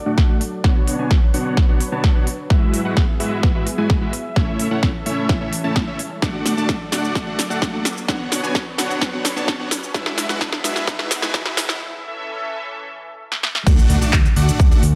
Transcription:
Already playing: analog synth pad F#3 D4 A4 D5, riser
0.06 supersaw synth A3 D4 F#4 D5 F#5
0.18 kick, snare
0.29 supersaw synth A3 D4 F#4 D5 F#5
0.41 open hi-hat
0.64 supersaw synth B3 D4 F#4 C#5 F#5, analog synth pad B4 C#5, kick, snare
0.87 open hi-hat
0.99 supersaw synth B3 D4 F#4 C#5 G#5
1.11 kick, snare
1.34 supersaw synth B3 D4 F#4 C#5 F#5, open hi-hat
1.57 kick, snare
1.69 supersaw synth B3 D4 F#4 C#5 F#5
1.80 open hi-hat
1.92 supersaw synth B3 D4 F#4 C#5 A5
2.04 kick, snare
2.15 supersaw synth B3 D4 F#4 C#5 F#5
2.27 open hi-hat
2.50 supersaw synth G#3 E4 F#4 B4 E5, analog synth pad B3 G#4 E5, kick, snare
2.74 open hi-hat
2.85 supersaw synth G#3 E4 F#4 B4 F#5
2.97 kick, snare
3.20 supersaw synth G#3 E4 F#4 B4 E5, open hi-hat
3.43 kick, snare
3.55 supersaw synth G#3 E4 F#4 B4 E5
3.67 open hi-hat
3.78 supersaw synth G#3 E4 F#4 B4 G#5
3.90 kick, snare
4.01 supersaw synth G#3 E4 F#4 B4 E5
4.13 open hi-hat
4.36 analog synth pad E3 C#4 A4, supersaw synth A3 C#4 E4 C#5 E5, kick, snare
4.59 open hi-hat
4.71 supersaw synth A3 C#4 E4 C#5 F#5
4.83 kick, snare
5.06 supersaw synth A3 C#4 E4 C#5 E5, open hi-hat
5.29 kick, snare
5.41 supersaw synth A3 C#4 E4 C#5 E5
5.53 open hi-hat
5.64 supersaw synth A3 C#4 E4 C#5 A5
5.76 kick, snare
5.87 supersaw synth A3 C#4 E4 C#5 E5
5.99 open hi-hat
6.22 analog synth pad F#3 D4 A4 D5, supersaw synth A3 D4 F#4 D5 F#5, kick, snare, shaker
6.46 snare, open hi-hat, shaker
6.57 supersaw synth A3 D4 F#4 D5 A5, shaker
6.69 kick, snare, shaker
6.92 supersaw synth A3 D4 F#4 D5 F#5, snare, open hi-hat, shaker
7.04 shaker
7.15 kick, snare, shaker
7.27 supersaw synth A3 D4 F#4 D5 F#5
7.39 snare, open hi-hat, shaker
7.50 supersaw synth A3 D4 F#4 D5 F#5, shaker
7.62 kick, snare, shaker
7.73 supersaw synth A3 D4 F#4 D5 F#5
7.85 snare, open hi-hat, shaker
7.98 shaker
8.08 supersaw synth B3 D4 F#4 C#5 F#5, analog synth pad D4 B4 C#5, kick, snare, shaker
8.32 snare, open hi-hat, shaker
8.43 supersaw synth B3 D4 F#4 C#5 G#5, shaker
8.55 kick, snare, shaker
8.78 supersaw synth B3 D4 F#4 C#5 F#5, snare, open hi-hat, shaker
8.91 shaker
9.01 kick, snare, shaker
9.13 supersaw synth B3 D4 F#4 C#5 F#5
9.25 snare, open hi-hat, shaker
9.36 supersaw synth B3 D4 F#4 C#5 A5, shaker
9.48 kick, snare, shaker
9.59 supersaw synth B3 D4 F#4 C#5 F#5
9.71 snare, open hi-hat, shaker
9.84 shaker
9.94 supersaw synth G#3 E4 F#4 B4 E5, analog synth pad B3 G#4 E5, kick, snare, shaker
10.06 snare
10.18 snare, open hi-hat, shaker
10.29 supersaw synth G#3 E4 F#4 B4 F#5, snare, shaker
10.41 kick, snare, shaker
10.53 snare
10.64 supersaw synth G#3 E4 F#4 B4 E5, snare, open hi-hat, shaker
10.76 snare, shaker
10.87 kick, snare, shaker
10.99 supersaw synth G#3 E4 F#4 B4 E5, snare
11.11 snare, open hi-hat, shaker
11.22 supersaw synth G#3 E4 F#4 B4 G#5, snare, shaker
11.34 kick, snare, shaker
11.46 supersaw synth G#3 E4 F#4 B4 E5, snare
11.57 snare, open hi-hat, shaker
11.69 snare, shaker
11.80 analog synth pad E3 C#4 A4 E5
13.32 snare
13.43 snare
13.55 snare
13.67 analog synth bass D2, supersaw synth A3 D4 F#4 D5 F#5, kick, crash, impact, shaker
13.79 shaker
13.90 analog synth bass D2, open hi-hat
14.01 supersaw synth A3 D4 F#4 D5 A5, shaker
14.13 analog synth bass D2, kick, clap, shaker
14.25 shaker
14.36 analog synth bass D2, supersaw synth A3 D4 F#4 D5 F#5, open hi-hat
14.49 shaker
14.60 analog synth bass D2, kick, shaker
14.71 supersaw synth A3 D4 F#4 D5 F#5, shaker
14.83 analog synth bass D2, open hi-hat

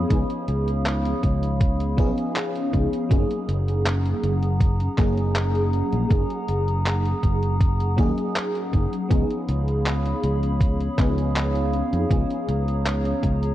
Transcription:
Already playing: fm electric piano F3 B3 C#4 D#4 G#4, ambient pad C#5 F5 B5 D#6
0.09 fretless electric bass C#2, fm electric piano F3 B3 C#4 D#4 G#4, kick, closed hi-hat
0.30 closed hi-hat
0.48 fretless electric bass C#2, closed hi-hat
0.68 closed hi-hat
0.86 clap, closed hi-hat
1.05 closed hi-hat
1.23 fretless electric bass C#2, kick, closed hi-hat
1.43 closed hi-hat
1.60 kick, closed hi-hat
1.80 closed hi-hat
1.97 fretless electric bass B1, fm electric piano F3 B3 C#4 D#4 G#4, kick, closed hi-hat
2.18 closed hi-hat
2.36 clap, closed hi-hat
2.55 closed hi-hat
2.73 fretless electric bass C#2, kick, closed hi-hat
2.93 closed hi-hat
3.09 fretless electric bass F#1, fm electric piano F#3 A#3 C#4 D#4 G#4, ambient pad G#4 F#5 A#5 D#6, kick, closed hi-hat
3.30 closed hi-hat
3.48 fretless electric bass F#1, closed hi-hat
3.68 closed hi-hat
3.86 clap, closed hi-hat
4.06 closed hi-hat
4.23 fretless electric bass F#1, closed hi-hat
4.43 closed hi-hat
4.61 kick, closed hi-hat
4.80 closed hi-hat
4.97 fretless electric bass F#1, fm electric piano F#3 A#3 C#4 D#4 G#4, kick, clap, closed hi-hat
5.18 closed hi-hat
5.36 clap, closed hi-hat
5.55 closed hi-hat
5.73 closed hi-hat
5.93 fretless electric bass A#1, closed hi-hat
6.09 fretless electric bass F#1, fm electric piano F#3 A#3 C#4 D#4 G#4, kick, closed hi-hat
6.30 closed hi-hat
6.48 fretless electric bass F#1, closed hi-hat
6.68 closed hi-hat
6.86 clap, closed hi-hat
7.05 closed hi-hat
7.23 fretless electric bass F#1, kick, closed hi-hat
7.43 closed hi-hat
7.61 kick, closed hi-hat
7.80 closed hi-hat
7.97 fretless electric bass D#2, fm electric piano F#3 A#3 C#4 D#4 G#4, kick, closed hi-hat
8.18 closed hi-hat
8.36 clap, closed hi-hat
8.55 closed hi-hat
8.73 fretless electric bass F#1, kick, closed hi-hat
8.93 closed hi-hat
9.09 fretless electric bass C#2, fm electric piano F3 B3 C#4 D#4 G#4, ambient pad C#5 F5 B5 D#6, kick, closed hi-hat
9.30 closed hi-hat
9.49 fretless electric bass C#2, closed hi-hat
9.68 closed hi-hat
9.86 clap, closed hi-hat
10.06 closed hi-hat
10.23 fretless electric bass C#2, closed hi-hat
10.43 closed hi-hat
10.61 kick, closed hi-hat
10.80 closed hi-hat
10.97 fretless electric bass C#2, fm electric piano F3 B3 C#4 D#4 G#4, kick, clap, closed hi-hat
11.18 closed hi-hat
11.36 clap, closed hi-hat
11.55 closed hi-hat
11.73 closed hi-hat
11.93 fretless electric bass F2, closed hi-hat
12.09 fretless electric bass C#2, fm electric piano F3 B3 C#4 D#4 G#4, ambient pad A#5, kick, closed hi-hat
12.30 closed hi-hat
12.48 fretless electric bass C#2, closed hi-hat
12.68 closed hi-hat
12.86 clap, closed hi-hat
13.05 closed hi-hat
13.23 fretless electric bass C#2, kick, closed hi-hat
13.43 closed hi-hat

